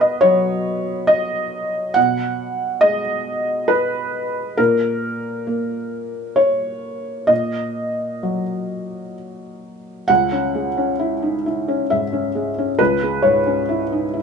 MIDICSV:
0, 0, Header, 1, 2, 480
1, 0, Start_track
1, 0, Tempo, 874636
1, 1079, Time_signature, 3, 2, 24, 8
1, 3003, Tempo, 924499
1, 5403, Tempo, 896861
1, 7614, End_track
2, 0, Start_track
2, 0, Title_t, "Felt piano"
2, 0, Program_c, 0, 0
2, 0, Control_c, 0, 64, 127
2, 0, Note_on_c, 0, 47, 62
2, 0, Note_on_c, 0, 71, 86
2, 5, Note_on_c, 0, 75, 77
2, 114, Note_on_c, 0, 73, 95
2, 125, Note_off_c, 0, 75, 0
2, 126, Note_on_c, 0, 54, 54
2, 589, Note_on_c, 0, 75, 96
2, 598, Note_off_c, 0, 73, 0
2, 1058, Note_off_c, 0, 47, 0
2, 1065, Note_on_c, 0, 78, 100
2, 1072, Note_off_c, 0, 75, 0
2, 1076, Note_on_c, 0, 47, 65
2, 1088, Control_c, 0, 64, 0
2, 1092, Note_off_c, 0, 71, 0
2, 1180, Control_c, 0, 64, 127
2, 1541, Note_on_c, 0, 75, 101
2, 1548, Note_off_c, 0, 78, 0
2, 1552, Note_on_c, 0, 56, 56
2, 1652, Note_off_c, 0, 54, 0
2, 2019, Note_on_c, 0, 71, 90
2, 2029, Note_off_c, 0, 75, 0
2, 2492, Note_off_c, 0, 47, 0
2, 2507, Note_off_c, 0, 71, 0
2, 2511, Note_on_c, 0, 70, 96
2, 2514, Note_off_c, 0, 56, 0
2, 2518, Note_on_c, 0, 46, 66
2, 2524, Control_c, 0, 64, 0
2, 2610, Control_c, 0, 64, 127
2, 3002, Note_on_c, 0, 58, 50
2, 3463, Note_on_c, 0, 73, 83
2, 3472, Note_off_c, 0, 70, 0
2, 3933, Note_off_c, 0, 46, 0
2, 3937, Note_on_c, 0, 75, 79
2, 3944, Note_on_c, 0, 46, 54
2, 3947, Note_off_c, 0, 73, 0
2, 3962, Control_c, 0, 64, 0
2, 4055, Control_c, 0, 64, 127
2, 4435, Note_on_c, 0, 54, 44
2, 4531, Note_off_c, 0, 58, 0
2, 4912, Note_off_c, 0, 75, 0
2, 5379, Note_off_c, 0, 46, 0
2, 5394, Note_on_c, 0, 78, 94
2, 5403, Note_off_c, 0, 54, 0
2, 5404, Note_on_c, 0, 37, 64
2, 5413, Control_c, 0, 64, 0
2, 5493, Control_c, 0, 64, 127
2, 5525, Note_on_c, 0, 61, 49
2, 5646, Note_on_c, 0, 56, 48
2, 5717, Note_off_c, 0, 61, 0
2, 5767, Note_on_c, 0, 61, 51
2, 5838, Note_off_c, 0, 56, 0
2, 5884, Note_on_c, 0, 64, 55
2, 5959, Note_off_c, 0, 61, 0
2, 6008, Note_on_c, 0, 63, 45
2, 6077, Note_off_c, 0, 64, 0
2, 6127, Note_off_c, 0, 63, 0
2, 6134, Note_on_c, 0, 64, 47
2, 6253, Note_on_c, 0, 61, 54
2, 6323, Note_off_c, 0, 64, 0
2, 6363, Note_off_c, 0, 78, 0
2, 6371, Note_on_c, 0, 76, 79
2, 6376, Note_on_c, 0, 44, 49
2, 6443, Note_off_c, 0, 61, 0
2, 6491, Note_on_c, 0, 61, 47
2, 6564, Note_off_c, 0, 44, 0
2, 6612, Note_on_c, 0, 56, 50
2, 6681, Note_off_c, 0, 61, 0
2, 6735, Note_on_c, 0, 61, 47
2, 6801, Note_off_c, 0, 56, 0
2, 6825, Note_off_c, 0, 37, 0
2, 6844, Note_on_c, 0, 71, 95
2, 6848, Note_off_c, 0, 76, 0
2, 6853, Note_on_c, 0, 37, 62
2, 6857, Control_c, 0, 64, 0
2, 6922, Note_off_c, 0, 61, 0
2, 6930, Control_c, 0, 64, 127
2, 6974, Note_on_c, 0, 56, 52
2, 7078, Note_on_c, 0, 73, 78
2, 7084, Note_off_c, 0, 71, 0
2, 7090, Note_on_c, 0, 44, 51
2, 7161, Note_off_c, 0, 56, 0
2, 7208, Note_on_c, 0, 61, 50
2, 7279, Note_off_c, 0, 44, 0
2, 7327, Note_on_c, 0, 64, 57
2, 7398, Note_off_c, 0, 61, 0
2, 7452, Note_on_c, 0, 63, 45
2, 7518, Note_off_c, 0, 64, 0
2, 7566, Note_on_c, 0, 64, 49
2, 7568, Note_off_c, 0, 63, 0
2, 7614, Note_off_c, 0, 37, 0
2, 7614, Note_off_c, 0, 64, 0
2, 7614, Note_off_c, 0, 73, 0
2, 7614, End_track
0, 0, End_of_file